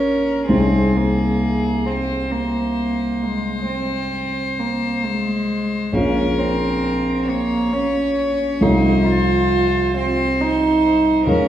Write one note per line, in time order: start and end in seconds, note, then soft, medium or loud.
0.00 0.45 A#1 soft
0.00 0.46 C#4 soft
0.00 0.48 C#4 medium
0.00 0.46 D#4 soft
0.00 0.46 G4 soft
0.00 0.47 A#4 soft
0.49 5.91 C2 soft
0.49 0.98 C4 medium
0.49 5.91 C4 soft
0.49 5.91 D#4 soft
0.49 1.89 G#4 soft
0.49 5.91 G#4 soft
0.96 1.88 A#3 medium
1.86 2.33 C4 medium
1.86 5.95 C5 soft
2.31 3.24 A#3 medium
3.23 3.67 G#3 medium
3.67 4.61 C4 medium
4.59 5.06 A#3 medium
5.05 5.94 G#3 medium
5.93 8.58 A#1 soft
5.93 8.58 F3 soft
5.93 6.40 C#4 medium
5.93 8.58 F4 soft
5.93 8.59 G#4 soft
5.93 7.28 A#4 medium
6.39 7.31 C4 medium
7.29 7.75 A#3 medium
7.29 8.64 C#5 soft
7.73 8.64 C#4 medium
8.61 11.23 C2 soft
8.61 11.23 F3 soft
8.61 9.08 D#4 medium
8.61 11.24 F4 soft
8.61 11.24 A4 soft
8.61 9.96 C5 soft
9.07 9.97 F4 medium
9.96 10.42 C4 medium
9.96 11.25 C5 medium
10.41 11.28 D#4 medium
11.27 11.48 C#2 soft
11.27 11.48 F3 soft
11.27 11.48 C#4 medium
11.27 11.48 F4 soft
11.27 11.48 A#4 medium
11.27 11.48 A#4 soft